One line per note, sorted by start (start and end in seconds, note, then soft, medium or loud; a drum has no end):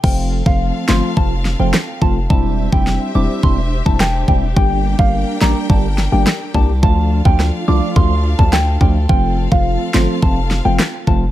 0.03 0.42 F1 loud
0.03 0.43 F3 medium
0.03 0.43 A3 medium
0.03 2.28 C4 medium
0.03 0.43 C4 medium
0.03 2.28 F4 medium
0.03 0.43 F4 loud
0.03 2.28 A4 medium
0.03 2.28 F5 medium
0.03 0.15 G5 medium
0.03 kick loud
0.03 crash medium
0.46 0.72 F1 loud
0.46 0.85 F3 medium
0.46 0.85 A3 medium
0.46 0.85 C4 medium
0.46 0.85 F4 medium
0.46 0.58 F5 medium
0.46 kick loud
0.88 1.01 G1 medium
0.88 1.14 F3 medium
0.88 1.15 A3 medium
0.88 1.15 C4 medium
0.88 1.15 F4 medium
0.88 1.00 C6 medium
0.88 snare loud
0.88 clap medium
1.17 1.55 F1 loud
1.17 1.34 F3 medium
1.17 1.34 A3 medium
1.17 1.34 C4 medium
1.17 1.34 F4 loud
1.17 1.28 A5 medium
1.17 kick medium
1.45 snare medium
1.59 1.72 F1 medium
1.59 1.76 F3 medium
1.59 1.76 A3 medium
1.59 1.77 C4 medium
1.59 1.77 F4 medium
1.59 1.71 G5 medium
1.74 cross-stick loud
1.74 snare loud
1.74 clap medium
2.02 2.27 F1 medium
2.02 2.19 F3 medium
2.02 2.19 A3 medium
2.02 2.19 C4 medium
2.02 2.19 F4 medium
2.02 2.13 A5 medium
2.02 kick medium
2.30 2.69 E1 loud
2.30 2.69 G3 medium
2.30 2.69 C4 medium
2.30 2.69 D4 medium
2.30 6.79 D4 medium
2.30 2.69 E4 loud
2.30 6.79 G4 medium
2.30 4.54 C5 medium
2.30 4.54 E5 medium
2.30 2.42 A5 loud
2.30 kick loud
2.72 2.98 F1 medium
2.72 3.11 G3 medium
2.72 3.12 C4 medium
2.72 3.12 D4 medium
2.72 3.12 E4 medium
2.72 2.84 G5 medium
2.72 kick loud
2.87 snare medium
3.15 3.28 E1 medium
3.15 3.41 G3 medium
3.15 3.41 C4 medium
3.15 3.41 D4 medium
3.15 3.41 E4 medium
3.15 3.27 D6 medium
3.43 3.82 E1 loud
3.43 3.60 G3 medium
3.43 3.60 C4 medium
3.43 3.60 D4 medium
3.43 3.61 E4 loud
3.43 3.55 C6 medium
3.43 kick medium
3.85 4.24 E1 loud
3.85 4.03 G3 medium
3.85 4.03 C4 medium
3.85 4.03 D4 medium
3.85 4.03 E4 medium
3.85 3.97 A5 medium
3.85 kick medium
4.00 4.12 G5 medium
4.00 cross-stick loud
4.00 snare loud
4.00 clap loud
4.28 4.54 E1 medium
4.28 4.45 G3 medium
4.28 4.45 C4 medium
4.28 4.45 D4 medium
4.28 4.45 E4 medium
4.28 4.40 G5 medium
4.28 kick medium
4.56 4.95 G1 loud
4.56 4.95 G3 loud
4.56 4.96 A#3 medium
4.56 4.96 D4 medium
4.56 4.96 G4 loud
4.56 6.81 A#4 medium
4.56 6.81 G5 medium
4.56 4.68 G5 loud
4.56 kick loud
4.99 5.25 G1 medium
4.99 5.38 G3 medium
4.99 5.38 A#3 medium
4.99 5.38 D4 medium
4.99 5.38 G4 medium
4.99 5.11 F5 medium
4.99 kick medium
5.41 5.54 A1 medium
5.41 5.67 G3 medium
5.41 5.67 A#3 medium
5.41 5.68 D4 medium
5.41 5.68 G4 medium
5.41 5.53 A#5 medium
5.41 snare loud
5.41 clap medium
5.69 6.08 G1 loud
5.69 5.87 G3 medium
5.69 5.87 A#3 medium
5.69 5.87 D4 medium
5.69 5.87 G4 loud
5.69 5.81 A5 medium
5.69 kick loud
5.98 snare medium
6.12 6.25 G1 loud
6.12 6.29 G3 medium
6.12 6.29 A#3 medium
6.12 6.29 D4 medium
6.12 6.29 G4 medium
6.12 6.24 G5 medium
6.27 cross-stick loud
6.27 snare loud
6.27 clap medium
6.54 6.84 C2 medium
6.54 6.72 G3 medium
6.54 6.72 A#3 medium
6.54 6.72 D4 medium
6.54 6.72 G4 medium
6.54 6.66 A5 medium
6.54 kick medium
6.83 7.21 D2 loud
6.83 7.22 F3 medium
6.83 7.22 A3 medium
6.83 9.07 D4 medium
6.83 7.22 D4 medium
6.83 9.07 F4 medium
6.83 7.22 F4 loud
6.83 11.31 A4 medium
6.83 9.07 F5 medium
6.83 6.95 A5 medium
6.83 kick loud
7.25 7.51 D2 medium
7.25 7.64 F3 medium
7.25 7.64 A3 medium
7.25 7.65 D4 medium
7.25 7.65 F4 medium
7.25 7.37 G5 medium
7.25 kick loud
7.40 cross-stick medium
7.40 snare medium
7.68 7.81 C2 medium
7.68 7.94 F3 medium
7.68 7.94 A3 medium
7.68 7.94 D4 medium
7.68 7.94 F4 medium
7.68 7.79 D6 medium
7.96 8.35 D2 loud
7.96 8.13 F3 medium
7.96 8.13 A3 medium
7.96 8.13 D4 medium
7.96 8.13 F4 loud
7.96 8.08 C6 medium
7.96 kick medium
8.38 8.77 D2 medium
8.38 8.56 F3 medium
8.38 8.56 A3 medium
8.38 8.56 D4 medium
8.38 8.56 F4 medium
8.38 8.50 A5 medium
8.38 kick medium
8.53 8.64 G5 medium
8.53 cross-stick loud
8.53 snare loud
8.53 clap loud
8.81 9.07 D2 medium
8.81 8.98 F3 medium
8.81 8.98 A3 medium
8.81 8.98 D4 medium
8.81 8.98 F4 medium
8.81 8.93 G5 medium
8.81 kick medium
9.09 9.48 F1 loud
9.09 9.48 F3 medium
9.09 9.48 A3 medium
9.09 9.48 C4 medium
9.09 11.31 C4 medium
9.09 11.31 F4 medium
9.09 9.49 F4 loud
9.09 11.31 F5 medium
9.09 9.21 G5 loud
9.09 kick loud
9.52 9.77 F1 medium
9.52 9.91 F3 medium
9.52 9.91 A3 medium
9.52 9.91 C4 medium
9.52 9.91 F4 medium
9.52 9.63 F5 medium
9.52 kick medium
9.94 10.07 G1 medium
9.94 10.20 F3 medium
9.94 10.20 A3 medium
9.94 10.20 C4 medium
9.94 10.20 F4 medium
9.94 10.06 C6 medium
9.94 snare loud
9.94 clap medium
10.22 10.61 F1 loud
10.22 10.39 F3 medium
10.22 10.40 A3 medium
10.22 10.40 C4 medium
10.22 10.40 F4 medium
10.22 10.34 A5 medium
10.22 kick loud
10.51 snare medium
10.65 10.78 F1 medium
10.65 10.82 F3 medium
10.65 10.82 A3 medium
10.65 10.82 C4 medium
10.65 10.82 F4 medium
10.65 10.77 G5 medium
10.79 cross-stick loud
10.79 snare loud
10.79 clap medium
11.07 11.31 F1 medium
11.07 11.24 F3 medium
11.07 11.25 A3 medium
11.07 11.25 C4 medium
11.07 11.25 F4 medium
11.07 11.19 A5 medium
11.07 kick medium